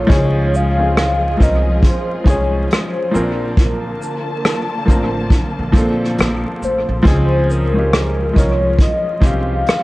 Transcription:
0.00 0.07 F3 loud
0.00 0.35 A3 medium
0.00 0.11 A#3 medium
0.00 0.12 C4 medium
0.00 0.12 D4 medium
0.00 0.34 F4 loud
0.00 7.02 F4 medium
0.00 0.12 A4 medium
0.00 0.12 C5 medium
0.00 0.57 C#5 loud
0.00 0.12 D5 medium
0.07 1.36 C#2 medium
0.07 0.51 F3 loud
0.07 3.11 F3 medium
0.07 0.52 G#3 loud
0.07 3.11 G#3 medium
0.07 0.53 C#4 loud
0.07 0.53 D#4 loud
0.07 3.11 G#4 medium
0.07 kick loud
0.11 0.54 G#4 loud
0.11 closed hi-hat medium
0.55 1.42 F5 loud
0.55 shaker soft
0.78 1.21 F3 medium
0.78 1.22 C4 medium
0.78 1.23 C#4 medium
0.78 1.23 D#4 medium
0.83 1.24 G#4 medium
0.97 cross-stick loud
0.97 closed hi-hat medium
1.37 1.79 C2 loud
1.37 1.99 F3 medium
1.37 1.99 C4 medium
1.37 2.00 C#4 medium
1.37 2.01 D#4 medium
1.37 kick medium
1.42 2.01 A#4 medium
1.42 1.82 D#5 loud
1.42 closed hi-hat soft
1.42 shaker soft
1.83 2.26 C5 medium
1.83 kick loud
1.83 closed hi-hat medium
2.24 2.65 C2 medium
2.24 3.10 F3 medium
2.24 3.12 G#3 medium
2.24 3.13 C#4 medium
2.24 3.13 D#4 medium
2.24 kick medium
2.29 3.14 G#4 medium
2.29 2.69 C#5 medium
2.29 shaker soft
2.71 3.11 C5 medium
2.71 cross-stick loud
2.71 closed hi-hat medium
3.11 3.92 A#1 loud
3.11 7.02 D3 medium
3.11 4.54 F3 medium
3.11 4.55 A#3 medium
3.11 7.01 A#3 medium
3.11 4.55 C4 medium
3.11 3.18 C5 medium
3.11 7.02 A5 medium
3.15 3.23 C#4 medium
3.15 3.59 A#4 medium
3.15 4.56 A#4 medium
3.15 shaker soft
3.22 4.59 D4 medium
3.57 5.28 A#4 medium
3.57 kick loud
3.57 closed hi-hat medium
4.02 shaker soft
4.45 cross-stick loud
4.45 closed hi-hat medium
4.86 5.27 A1 medium
4.86 5.47 F3 medium
4.86 5.47 A#3 medium
4.86 5.48 C4 medium
4.86 5.49 D4 medium
4.86 kick medium
4.90 5.49 A#4 medium
4.90 shaker soft
5.30 kick loud
5.30 closed hi-hat medium
5.59 5.73 A#1 medium
5.72 6.13 A#2 loud
5.72 6.59 F3 loud
5.72 6.60 A#3 medium
5.72 6.61 C4 medium
5.72 6.61 D4 medium
5.72 kick medium
5.77 6.62 A4 loud
5.77 closed hi-hat soft
5.77 shaker soft
6.04 cross-stick soft
6.18 6.43 A#1 loud
6.18 cross-stick loud
6.18 closed hi-hat medium
6.62 6.86 A1 medium
6.62 7.53 C5 loud
6.62 shaker soft
6.89 7.04 A#1 medium
7.03 8.32 C#2 loud
7.03 7.47 F3 loud
7.03 9.83 F3 medium
7.03 9.83 G#3 medium
7.03 7.48 C4 loud
7.03 7.48 C#4 loud
7.03 9.83 F4 medium
7.03 kick loud
7.07 7.49 D#4 loud
7.07 7.49 G#4 loud
7.07 closed hi-hat medium
7.50 8.37 A#4 loud
7.50 shaker soft
7.74 8.17 F3 medium
7.74 8.18 C4 medium
7.74 8.18 C#4 medium
7.78 8.19 D#4 medium
7.78 8.20 G4 medium
7.93 cross-stick loud
7.93 closed hi-hat medium
8.33 8.75 C2 medium
8.33 8.95 F3 medium
8.33 8.95 G#3 medium
8.33 8.96 C#4 medium
8.33 kick medium
8.38 8.97 D#4 medium
8.38 8.97 A#4 medium
8.38 8.78 C#5 loud
8.38 closed hi-hat soft
8.38 shaker soft
8.79 9.27 D#5 loud
8.79 kick loud
8.79 closed hi-hat medium
9.20 9.61 C2 medium
9.20 9.83 F3 medium
9.20 9.83 C4 medium
9.20 9.83 C#4 medium
9.20 9.83 D#4 medium
9.20 kick medium
9.25 9.83 G4 medium
9.25 9.83 F5 loud
9.25 shaker soft
9.66 cross-stick loud
9.66 closed hi-hat medium

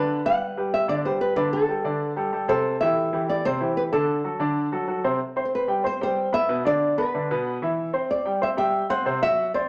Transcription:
0.00 0.19 D3 medium
0.00 0.19 D4 medium
0.00 0.26 B4 medium
0.00 0.19 D5 medium
0.25 0.51 G3 medium
0.25 0.51 G4 medium
0.25 0.51 B4 medium
0.25 0.70 F#5 medium
0.57 0.83 G3 medium
0.57 0.83 G4 medium
0.57 0.83 B4 medium
0.74 0.88 E5 medium
0.88 1.01 D3 medium
0.88 1.01 D4 medium
0.88 1.02 D5 medium
0.88 0.94 D5 medium
1.05 1.31 G3 medium
1.05 1.31 G4 medium
1.05 1.31 B4 medium
1.05 1.21 C5 medium
1.21 1.35 B4 medium
1.36 1.62 D3 medium
1.36 1.63 D4 medium
1.36 1.51 B4 medium
1.36 1.63 D5 medium
1.53 2.13 A4 medium
1.68 1.81 G3 medium
1.68 1.82 G4 medium
1.68 1.82 A4 medium
1.84 2.10 D3 medium
1.84 2.11 D4 medium
1.84 2.11 D5 medium
2.16 2.29 G3 medium
2.16 2.30 G4 medium
2.16 2.30 A4 medium
2.33 2.46 G3 medium
2.33 2.46 G4 medium
2.33 2.46 A4 medium
2.48 2.74 C3 medium
2.48 2.75 C4 medium
2.48 2.82 A4 medium
2.48 2.75 C5 medium
2.81 3.07 E3 medium
2.81 3.07 E4 medium
2.81 3.08 G4 medium
2.81 3.25 E5 loud
3.13 3.39 E3 medium
3.13 3.39 E4 medium
3.13 3.39 G4 medium
3.29 3.44 D5 loud
3.45 3.58 C3 medium
3.45 3.58 C4 medium
3.45 3.77 C5 medium
3.45 3.58 C5 medium
3.60 3.87 E3 medium
3.60 3.87 E4 medium
3.60 3.87 G4 medium
3.77 3.82 B4 medium
3.93 4.19 D3 medium
3.93 4.19 D4 medium
3.93 5.00 A4 medium
3.93 4.19 D5 medium
4.24 4.37 F#3 medium
4.24 4.37 F#4 medium
4.24 4.38 A4 medium
4.39 4.66 D3 medium
4.39 4.66 D4 medium
4.39 4.67 D5 medium
4.72 4.85 F#3 medium
4.72 4.86 F#4 medium
4.72 4.86 A4 medium
4.88 5.01 F#3 medium
4.88 5.01 F#4 medium
4.88 5.01 A4 medium
5.04 5.17 C3 medium
5.04 5.17 C4 medium
5.04 5.18 C5 medium
5.36 5.62 C4 medium
5.36 5.63 C5 medium
5.36 5.63 C6 medium
5.45 5.52 C5 medium
5.55 5.84 B4 medium
5.68 5.81 G3 medium
5.68 5.81 G4 medium
5.68 5.82 G5 medium
5.84 5.97 C4 medium
5.84 5.97 C5 medium
5.84 6.00 C5 medium
5.84 5.98 C6 medium
6.01 6.27 G3 medium
6.01 6.27 G4 medium
6.01 6.35 C5 medium
6.01 6.27 G5 medium
6.32 6.46 B3 medium
6.32 6.46 B4 medium
6.32 6.63 E5 loud
6.32 6.46 B5 medium
6.49 6.62 B2 medium
6.49 6.62 B3 medium
6.49 6.62 B4 medium
6.65 6.91 D3 medium
6.65 6.91 D4 medium
6.65 6.91 D5 medium
6.65 6.95 D5 loud
6.98 7.10 B3 medium
6.98 7.57 B4 medium
6.98 7.11 B4 medium
6.98 7.11 B5 medium
7.14 7.27 D3 medium
7.14 7.27 D4 medium
7.14 7.27 D5 medium
7.31 7.56 B2 medium
7.31 7.56 B3 medium
7.31 7.56 B4 medium
7.62 7.88 E3 medium
7.62 7.88 E4 medium
7.62 7.88 E5 medium
7.93 8.19 C4 medium
7.93 8.20 C5 medium
7.93 8.20 C6 medium
8.11 8.40 D5 medium
8.26 8.39 G3 medium
8.26 8.39 G4 medium
8.26 8.38 G5 medium
8.41 8.54 C4 medium
8.41 8.55 C5 medium
8.41 8.48 E5 medium
8.41 8.55 C6 medium
8.57 8.83 G3 medium
8.57 8.83 G4 medium
8.57 8.87 E5 medium
8.57 8.84 G5 medium
8.90 9.03 C4 medium
8.90 9.03 C5 medium
8.90 9.20 F#5 medium
8.90 9.03 C6 medium
9.05 9.19 C3 medium
9.05 9.19 C4 medium
9.05 9.19 C5 medium
9.22 9.48 F#3 medium
9.22 9.48 F#4 medium
9.22 9.52 E5 medium
9.22 9.48 F#5 medium
9.54 9.67 C4 medium
9.54 9.67 C5 medium
9.54 9.69 D5 medium
9.54 9.68 C6 medium

